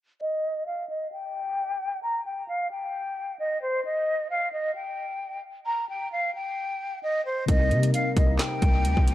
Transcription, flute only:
0.21 0.64 D#5 loud
0.67 0.88 F5 medium
0.89 1.11 D#5 medium
1.12 1.99 G5 medium
2.03 2.24 A#5 loud
2.26 2.47 G5 medium
2.48 2.70 F5 medium
2.71 3.35 G5 medium
3.39 3.61 D#5 medium
3.62 3.83 C5 medium
3.85 4.28 D#5 loud
4.30 4.52 F5 medium
4.53 4.74 D#5 medium
4.75 5.41 G5 medium
5.67 5.88 A#5 loud
5.89 6.11 G5 medium
6.12 6.33 F5 medium
6.35 6.99 G5 medium
7.03 7.24 D#5 medium
7.26 7.47 C5 medium
7.48 7.91 D#5 loud
7.94 8.15 F5 medium
8.17 8.38 D#5 medium
8.39 9.14 G5 loud

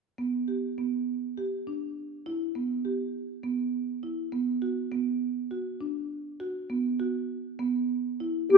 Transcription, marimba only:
0.18 0.45 B3 medium
0.48 0.75 G4 soft
0.78 1.31 B3 medium
1.38 1.64 G4 medium
1.67 2.19 D4 soft
2.26 2.52 E4 medium
2.55 2.82 B3 soft
2.85 3.37 G4 medium
3.43 3.96 B3 medium
4.03 4.29 E4 soft
4.32 4.58 B3 medium
4.62 4.88 F#4 medium
4.92 5.44 B3 medium
5.51 5.77 F#4 medium
5.81 6.33 D4 medium
6.40 6.66 F#4 medium
6.70 6.96 B3 medium
7.00 7.53 F#4 medium
7.59 8.13 B3 medium
8.20 8.47 E4 medium
8.50 8.58 B3 medium

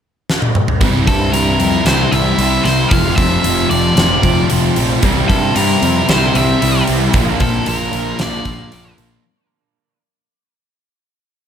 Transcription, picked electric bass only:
0.81 1.00 C2 medium
1.07 1.27 G2 medium
1.34 1.53 G2 medium
1.59 1.79 F2 medium
1.85 2.05 C2 medium
2.12 2.32 C2 medium
2.38 2.58 C2 medium
2.65 2.84 C2 medium
2.91 3.10 F1 medium
3.18 3.37 F1 medium
3.44 3.63 F1 medium
3.71 3.90 F1 medium
3.97 4.16 F1 medium
4.23 4.42 F1 medium
4.51 4.70 F1 medium
4.77 4.96 A#1 medium
5.03 5.22 C2 medium
5.29 5.48 G2 medium
5.56 5.75 G2 medium
5.82 6.01 F2 medium
6.09 6.28 C2 medium
6.35 6.54 C2 medium
6.63 6.81 C2 medium
6.89 7.07 C2 medium
7.14 7.33 A#1 medium
7.40 7.59 A#1 medium
7.67 7.86 A#1 medium
7.94 8.12 A#1 medium
8.20 8.39 A#1 medium
8.46 8.64 A#1 medium
8.73 8.91 A#1 medium
8.98 9.17 A#1 medium

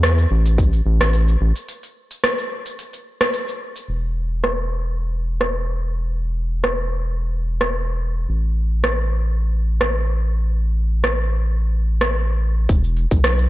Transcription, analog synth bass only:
0.00 0.26 E2 loud
0.31 0.81 A1 medium
0.86 1.36 A1 loud
1.41 1.52 A1 medium
3.88 8.26 E1 medium
8.29 12.67 A1 medium
12.69 13.06 E1 medium
13.11 13.47 B1 loud

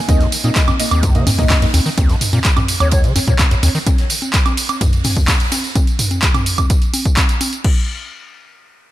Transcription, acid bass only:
0.09 0.22 D#2 medium
0.21 0.27 F#2 medium
0.44 0.51 A#2 medium
0.68 0.72 F#2 medium
0.91 1.16 D#2 medium
1.15 1.25 C#3 loud
1.27 1.31 F#2 medium
1.39 1.45 A#2 medium
1.50 1.54 D#2 medium
1.62 1.66 F#2 medium
1.74 1.80 D#2 loud
1.86 1.90 D#3 medium
1.98 2.11 D#2 medium
2.09 2.16 F#2 medium
2.33 2.40 A#2 medium
2.57 2.61 F#2 medium
2.80 3.05 D#2 medium
3.04 3.14 C#3 loud
3.16 3.20 F#2 medium
3.28 3.34 A#2 medium
3.39 3.43 D#2 medium
3.51 3.55 F#2 medium
3.63 3.70 D#2 loud
3.75 3.79 D#3 medium

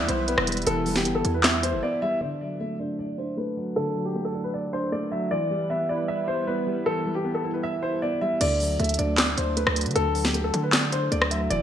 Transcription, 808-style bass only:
0.09 0.36 B1 loud
0.38 0.65 E1 loud
0.67 1.07 E1 loud
1.05 1.24 G1 loud
1.25 1.75 E2 loud
1.73 1.82 F#1 loud
8.41 8.78 D2 loud
8.80 8.98 D2 loud
8.99 9.36 D2 loud
9.38 9.65 D2 loud
9.67 9.87 D2 loud
9.86 9.95 D3 loud
9.96 10.51 D2 loud
10.54 11.09 D3 loud
11.12 11.49 D2 loud
11.50 11.62 E1 loud

